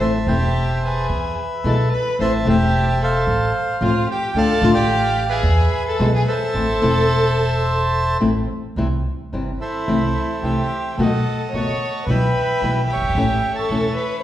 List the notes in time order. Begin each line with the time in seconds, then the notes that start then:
0.00 A1 E3 A3 C4 E4 C5 E5 A5 C6
0.27 E1 E3 A3 C4 E4 G4 C5 E5 G5
0.83 G#4 B4 E5 G#5
1.09 E2
1.64 B1 B2 E3 G#3 B3 E4 A4 A5
1.92 B4 B5
2.19 A1 E3 A3 C4 E4 C5 E5 A5 C6
2.45 E1 E3 A3 C4 E4 G4
2.49 C5 E5 G5
3.01 A4 C5 F5 A5
3.27 A1
3.81 A1 F3 A3 C4 F4 F5
4.10 G4 G5
4.34 D2 D3 A3 D4 F4 A4 D5 F5 A5
4.62 A1 D3 A3 D4 F4
4.74 G4 D5 G5
5.29 G#4 B4 E5 G#5
5.43 E2
5.88 A4 A5
5.99 B1 B2 E3 G#3 B3 E4
6.16 G#4 G#5
6.28 A4 C5 E5 A5
6.54 A1 E3 A3 C4 E4
6.82 E1 E3 A3 C4 E4
8.20 A1 E3 A3 C4 E4
8.76 C2 C3 E3 G3 C4 E4
9.32 G1 C3 E3 G3 C4 E4
9.61 E4 A4 C5 E5
9.88 C2 C3 E3 A3 C4 E4
10.42 C2 C3 E3 A3 C4 E4 G4 C5 E5 G5
10.97 B1 B2 D#3 A3 B3 F#4 A4 D#5 A5
11.01 F#5
11.51 F#1 B2 D#3 A3 B3 F#4 C#5 C#6
11.57 F#5 A5
12.06 B1 B2 E3 G3 B3 E4 B4 B5
12.10 E5 G5
12.61 B1 B2 E3 G3 B3 E4
12.88 G4 G5
12.92 F#1 C#5 E5
13.02 G1
13.09 G#1
13.15 A1 E3 A3 C#4 E4
13.54 A4 A5
13.58 C#5 E5
13.69 E1 E3 A3 C#4 E4
13.95 B4 B5